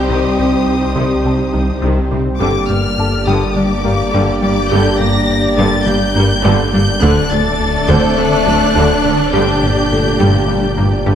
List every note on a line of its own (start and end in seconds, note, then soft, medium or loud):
0.00 2.43 C2 medium
0.00 2.08 G3 loud
0.00 2.39 G3 loud
0.00 2.08 C4 loud
0.00 2.41 C4 loud
0.00 2.17 D#4 loud
0.00 2.21 G4 loud
0.00 2.39 G4 loud
0.00 2.17 C5 medium
0.00 2.41 C5 loud
0.00 0.63 G5 medium
0.09 0.27 C2 loud
0.09 0.18 C2 medium
0.09 0.17 C3 medium
0.09 0.27 C3 loud
0.09 0.37 D#3 medium
0.09 1.79 D#6 loud
0.39 0.47 C2 medium
0.39 0.56 C2 medium
0.39 0.47 C3 medium
0.39 0.47 C4 medium
0.39 0.56 C4 medium
0.67 0.85 C2 medium
0.96 1.04 C2 medium
0.96 1.14 C2 loud
0.96 1.13 C3 loud
0.96 1.04 C3 medium
0.96 1.23 D#3 medium
1.25 1.33 C2 medium
1.25 1.33 C3 medium
1.25 1.43 C3 medium
1.25 1.42 G3 medium
1.25 1.34 C4 medium
1.25 2.95 A5 soft
1.53 1.62 C2 soft
1.53 1.72 C2 medium
1.53 1.62 C3 medium
1.53 1.71 D#3 medium
1.53 1.62 G3 medium
1.82 2.00 C2 loud
1.82 1.91 C2 medium
1.82 2.00 C3 loud
1.82 1.91 C3 medium
1.82 2.10 D#3 medium
2.11 2.19 C2 medium
2.11 2.20 C3 medium
2.11 2.29 C3 medium
2.11 2.29 G3 medium
2.11 2.20 C4 medium
2.40 2.48 G1 medium
2.40 7.04 G1 medium
2.40 2.58 G2 loud
2.40 2.49 G2 medium
2.40 2.68 D3 loud
2.40 2.58 G3 loud
2.40 6.98 G3 medium
2.40 7.02 A#3 loud
2.40 6.98 A#3 medium
2.40 6.98 D4 medium
2.40 6.98 G4 loud
2.40 6.98 G4 medium
2.40 7.01 D5 loud
2.40 6.98 D5 medium
2.40 4.10 G5 medium
2.40 2.67 D6 loud
2.69 2.78 G1 medium
2.69 2.87 G2 medium
2.69 2.78 G2 medium
2.69 2.78 A#3 medium
2.69 2.87 G4 medium
2.69 3.27 F6 loud
2.98 3.16 G2 medium
2.98 4.68 A4 medium
2.98 4.68 A5 medium
3.27 3.35 G1 medium
3.27 3.45 G2 loud
3.27 3.35 G2 medium
3.27 3.55 D3 medium
3.27 3.45 G3 loud
3.27 3.56 D#6 loud
3.55 3.64 G1 medium
3.55 3.64 G2 medium
3.55 3.73 G3 medium
3.55 3.64 A#3 medium
3.55 3.74 D4 medium
3.55 4.40 D6 loud
3.85 3.93 G1 medium
3.85 4.02 G2 medium
3.85 3.94 G2 medium
3.85 3.93 G3 medium
3.85 4.02 A#3 medium
3.85 5.55 F5 medium
4.13 4.22 G1 medium
4.13 4.31 G2 loud
4.13 4.22 G2 medium
4.13 4.40 D3 medium
4.13 4.31 G3 loud
4.41 4.51 G1 medium
4.41 4.51 G2 medium
4.41 4.60 G3 medium
4.41 4.51 A#3 medium
4.41 4.60 D4 medium
4.41 6.12 G5 medium
4.41 4.70 D6 loud
4.71 4.80 G1 medium
4.71 4.89 G2 loud
4.71 4.80 G2 loud
4.71 4.98 D3 loud
4.71 4.89 G3 loud
4.71 5.00 G6 loud
5.00 5.08 G1 medium
5.00 5.18 G2 medium
5.00 5.09 G2 medium
5.00 5.09 A#3 medium
5.00 5.18 G4 medium
5.00 5.57 A#6 loud
5.30 5.47 G2 medium
5.57 5.66 G1 loud
5.57 5.75 G2 loud
5.57 5.66 G2 loud
5.57 5.85 D3 loud
5.57 5.76 G3 loud
5.57 7.28 D5 medium
5.57 5.86 A6 loud
5.86 5.95 G1 medium
5.86 5.95 G2 medium
5.86 6.04 G3 medium
5.86 5.95 A#3 medium
5.86 6.04 D4 medium
5.86 6.72 G6 loud
6.15 6.24 G1 medium
6.15 6.33 G2 medium
6.15 6.24 G2 medium
6.15 6.24 G3 loud
6.15 6.33 A#3 medium
6.45 6.53 G1 loud
6.45 6.53 G2 loud
6.45 6.62 G2 loud
6.45 6.71 D3 loud
6.45 6.62 G3 loud
6.73 6.82 G1 medium
6.73 6.82 G2 loud
6.73 6.91 G3 medium
6.73 6.81 A#3 loud
6.73 6.91 D4 medium
6.73 7.02 G6 loud
7.01 9.35 D1 loud
7.01 7.19 D2 loud
7.01 7.10 D2 loud
7.01 7.11 D2 loud
7.01 7.29 D3 loud
7.01 11.15 D3 loud
7.01 7.20 D3 loud
7.01 9.16 A3 loud
7.01 9.33 A3 loud
7.01 11.15 D4 loud
7.01 9.33 A4 loud
7.01 9.30 A4 loud
7.01 11.15 D5 loud
7.01 7.31 F#6 loud
7.31 7.39 D2 medium
7.31 7.49 D2 medium
7.31 7.39 D2 medium
7.31 7.39 A3 medium
7.31 7.49 D4 medium
7.31 7.89 A6 loud
7.60 7.77 D2 medium
7.88 7.96 D2 loud
7.88 8.06 D2 loud
7.88 7.97 D2 loud
7.88 8.06 D3 loud
7.88 8.16 D3 loud
7.88 9.58 C4 medium
7.88 9.58 C5 medium
7.88 8.18 G6 loud
8.17 8.25 D2 medium
8.17 8.26 D2 medium
8.17 8.35 D3 medium
8.17 8.35 A3 medium
8.17 8.26 A3 medium
8.17 9.33 F#6 loud
8.46 8.54 D2 medium
8.46 8.64 D2 medium
8.46 8.64 F#3 medium
8.46 8.55 F#3 medium
8.75 8.83 D2 loud
8.75 8.93 D2 loud
8.75 9.02 D3 loud
8.75 8.93 D3 loud
9.04 9.12 D2 medium
9.04 9.22 D3 medium
9.04 9.21 A3 medium
9.04 9.12 A3 medium
9.33 9.41 G1 medium
9.33 11.15 G1 medium
9.33 9.41 G2 medium
9.33 9.51 G2 loud
9.33 11.15 A#2 loud
9.33 9.60 D3 loud
9.33 9.50 G3 loud
9.33 11.15 G4 medium
9.33 11.15 G4 loud
9.33 11.15 G6 loud
9.62 9.70 G1 medium
9.62 9.70 G2 medium
9.62 9.80 G2 medium
9.62 9.71 A#3 medium
9.62 9.79 G4 medium
9.91 10.09 G2 medium
9.91 11.15 A3 medium
9.91 11.15 A4 medium
10.19 10.27 G1 medium
10.19 10.28 G2 medium
10.19 10.37 G2 loud
10.19 10.47 D3 medium
10.19 10.37 G3 loud
10.48 10.56 G1 medium
10.48 10.56 G2 medium
10.48 10.66 G3 medium
10.48 10.57 A#3 medium
10.48 10.66 D4 medium
10.77 10.85 G1 medium
10.77 10.85 G2 medium
10.77 10.95 G2 medium
10.77 10.85 G3 medium
10.77 10.95 A#3 medium
11.06 11.14 G1 medium
11.06 11.14 G2 medium
11.06 11.15 G2 loud
11.06 11.15 D3 medium
11.06 11.15 G3 loud